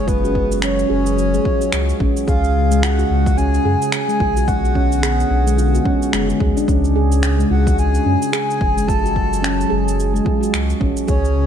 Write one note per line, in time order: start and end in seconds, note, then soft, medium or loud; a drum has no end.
0.00 0.84 F#1 medium
0.00 11.46 G#3 medium
0.00 2.23 C#4 medium
0.07 2.26 F#3 medium
0.07 0.23 F4 medium
0.07 2.26 G#4 medium
0.07 0.59 B4 loud
0.07 kick loud
0.07 shaker medium
0.23 0.30 F#4 medium
0.23 shaker soft
0.35 kick medium
0.52 shaker medium
0.62 0.89 C#4 medium
0.62 0.88 C#5 medium
0.62 finger snap loud
0.62 shaker medium
0.79 shaker soft
0.90 1.39 F#1 loud
0.90 1.05 G#4 loud
0.90 1.97 C#5 medium
1.06 shaker medium
1.18 shaker medium
1.34 1.45 G#3 medium
1.34 shaker soft
1.45 1.60 F4 medium
1.45 kick loud
1.61 1.68 F#4 medium
1.61 shaker medium
1.72 1.93 C#2 medium
1.72 finger snap loud
1.72 shaker medium
1.89 shaker soft
2.00 2.11 A1 loud
2.00 2.27 C#4 medium
2.00 kick loud
2.17 shaker medium
2.27 3.04 C#2 loud
2.27 4.46 C#3 medium
2.27 4.46 G#3 medium
2.27 2.43 G#4 loud
2.27 2.84 F5 loud
2.27 kick loud
2.27 shaker medium
2.44 shaker soft
2.71 2.82 G#3 medium
2.71 shaker medium
2.83 2.98 F4 medium
2.83 3.39 F#5 loud
2.83 finger snap loud
2.83 shaker medium
2.99 3.05 F#4 medium
2.99 shaker soft
3.10 3.59 C#2 loud
3.26 kick loud
3.26 shaker medium
3.37 3.64 C#4 medium
3.37 3.92 G#5 loud
3.37 shaker medium
3.54 shaker soft
3.65 3.76 F#2 medium
3.65 3.81 G#4 medium
3.82 shaker medium
3.92 4.49 G#5 loud
3.92 finger snap medium
3.92 shaker medium
4.08 4.20 G#3 medium
4.08 shaker soft
4.20 5.24 B1 medium
4.20 4.35 F4 medium
4.20 kick loud
4.37 4.43 F#4 medium
4.37 shaker medium
4.48 6.66 D3 medium
4.48 6.66 B3 medium
4.48 6.13 F#5 loud
4.48 kick loud
4.48 shaker medium
4.65 shaker soft
4.75 5.02 C#4 medium
4.75 kick medium
4.92 shaker medium
5.03 5.18 G#4 loud
5.03 finger snap loud
5.03 shaker medium
5.20 shaker soft
5.30 5.79 B1 loud
5.46 5.57 G#3 medium
5.46 shaker medium
5.58 5.73 F4 medium
5.58 shaker medium
5.74 5.80 F#4 medium
5.74 shaker soft
5.85 6.01 C#4 medium
5.85 kick loud
6.02 shaker medium
6.13 6.33 F#1 medium
6.13 6.28 G#3 medium
6.13 finger snap loud
6.13 shaker medium
6.29 6.40 G#3 medium
6.29 shaker soft
6.40 6.51 D2 loud
6.40 6.55 G#4 medium
6.40 kick loud
6.57 6.68 D4 loud
6.57 shaker medium
6.68 7.45 C#2 loud
6.68 8.86 C#3 medium
6.68 8.86 G#3 medium
6.68 6.95 C#4 medium
6.68 kick loud
6.68 shaker medium
6.84 shaker soft
6.96 7.11 G#4 loud
7.12 shaker medium
7.23 finger snap loud
7.23 shaker medium
7.39 7.50 G#3 medium
7.39 shaker soft
7.51 8.00 C#2 loud
7.51 7.66 F4 medium
7.51 7.76 F#5 medium
7.67 7.73 F#4 medium
7.67 kick loud
7.67 shaker medium
7.78 8.30 G#5 loud
7.78 shaker medium
7.95 shaker soft
8.05 8.17 F#2 medium
8.05 8.32 C#4 medium
8.22 shaker medium
8.32 8.48 G#4 loud
8.32 8.89 G#5 loud
8.32 finger snap medium
8.32 shaker medium
8.50 shaker soft
8.61 9.65 F#1 medium
8.61 kick loud
8.77 8.88 G#3 medium
8.77 shaker medium
8.88 11.06 F#3 medium
8.88 11.06 G#3 loud
8.88 9.03 F4 medium
8.88 9.98 A5 loud
8.88 kick loud
8.88 shaker medium
9.04 9.10 F#4 medium
9.04 shaker soft
9.16 kick medium
9.33 shaker medium
9.42 9.69 C#4 medium
9.42 finger snap loud
9.42 shaker medium
9.61 shaker soft
9.70 10.20 F#1 loud
9.70 9.86 G#4 loud
9.88 shaker medium
10.00 shaker medium
10.13 10.25 G#3 medium
10.13 shaker soft
10.25 10.41 F4 medium
10.25 kick loud
10.41 10.48 F#4 medium
10.41 shaker medium
10.54 10.73 C#2 medium
10.54 finger snap medium
10.54 shaker medium
10.70 shaker soft
10.80 10.92 A1 loud
10.80 11.07 C#4 medium
10.80 kick loud
10.97 shaker medium
11.07 11.46 C#2 loud
11.07 11.46 C#3 medium
11.07 11.46 G#3 medium
11.07 11.23 G#4 medium
11.07 11.46 C#5 loud
11.07 kick loud
11.07 shaker medium
11.25 shaker soft